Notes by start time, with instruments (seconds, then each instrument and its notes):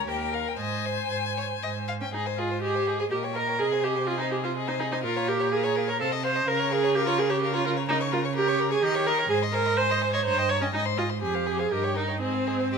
0.07 cello D#2, violin G4 G5, viola A#4
0.21 violin G5
0.33 violin A#4 F5
0.48 violin G5
0.59 cello G#2, viola C5, violin D#5 G#5
0.86 violin C5
1.11 cello G#2, violin C5
1.37 violin C#5
1.63 cello G#2, violin D#5
1.88 violin F5
2.01 viola C#4, violin G5
2.14 cello G#2, viola D#4, violin G#4 D#5
2.25 violin C5 G#5
2.38 viola F4, violin G#4 D#5
2.51 violin C5 G#5
2.62 viola G4, violin G#4 D#5
2.75 violin C5 G#5
2.87 violin G#4 D#5
2.98 viola G#4, violin C5 G#5
3.10 cello A#2, viola G4, violin A#4 D#5
3.23 violin C#5 G5
3.35 viola A#4, violin A#4 D#5
3.47 violin C#5 G5
3.59 cello C3, viola G#4, violin G#4 D#5
3.72 violin C5 G#5
3.84 viola G4, violin G#4 D#5
3.96 violin C5 G#5
4.07 viola F4, violin G#4 D#5
4.19 viola D#4, violin C5 G#5
4.31 viola G4, violin G#4 D#5
4.44 viola F4, violin C5 G#5
4.56 violin G#4 D#5
4.67 viola D#4, violin C5 G#5
4.79 viola D#4, violin G#4 D#5
4.92 viola D#4, violin C5 G#5
5.03 cello A#2, viola F4, violin A#4 F5
5.16 violin C#5 A#5
5.28 viola G4, violin A#4 F5
5.40 violin C#5 A#5
5.52 viola G#4, violin A#4 F5
5.63 violin C#5 A#5
5.75 violin A#4 F5
5.88 viola A#4, violin C#5 A#5
6.00 cello C3, viola A4, violin C5 F5
6.11 violin D#5 A5
6.24 violin C5 F5, viola C5
6.35 violin D#5 A5
6.47 cello C#3, violin A#4 F5, viola A#4
6.59 violin C#5 A#5
6.71 viola G#4, violin A#4 F5
6.83 violin C#5 A#5
6.95 viola G4, violin A#4 F5
7.06 viola F4, violin C#5 A#5
7.18 viola G#4, violin A#4 F5
7.29 viola G4, violin C#5 A#5
7.41 violin A#4 F5
7.53 viola F4, violin C#5 A#5
7.64 viola F4, violin A#4 F5
7.77 violin C#5 A#5
7.88 viola D#4, violin A#4 A#5
8.00 violin C#5 C#6
8.12 viola F4, violin A#4 A#5
8.24 violin C#5 C#6
8.36 viola G4, violin A#4 A#5
8.48 violin C#5 C#6
8.59 violin A#4 A#5
8.70 viola G#4, violin C#5 C#6
8.83 cello D#3, viola G4, violin D#5 A#5
8.95 violin C#5 G5
9.07 viola A#4, violin D#5 A#5
9.19 violin C#5 G5
9.30 cello G#2, viola G#4, violin C5 G#5
9.42 violin D#5 C6
9.53 viola A#4, violin C5 G#5
9.65 violin D#5 C6
9.77 viola C5, violin C5 G#5
9.89 violin D#5 C6
10.01 violin C5 G#5
10.13 viola C#5, violin D#5 C6
10.25 cello G2, viola C5, violin C#5 A#5
10.38 violin D#5 G5
10.49 viola C#5, violin C#5 A#5
10.62 viola C#4, violin D#5 G5
10.73 cello G#2, viola D#4, violin D#5 G#5
10.85 violin C5 C6
10.98 viola F4, violin D#5 G#5
11.09 violin C5 C6
11.22 cello F2, viola G4, violin G#4 G#5
11.34 violin C5 F5
11.46 violin G#4 G#5
11.59 viola G#4, violin C5 F5
11.71 cello G2, viola G4, violin A#4 D#5
11.84 violin C#5 G5
11.96 viola D#4, violin A#4 D#5
12.08 violin C#5 G5
12.20 cello G#2, viola C4, violin G#4 D#5
12.34 violin C5 G#5
12.47 violin G#4 D#5
12.60 violin C5 G#5
12.73 violin G4 D#5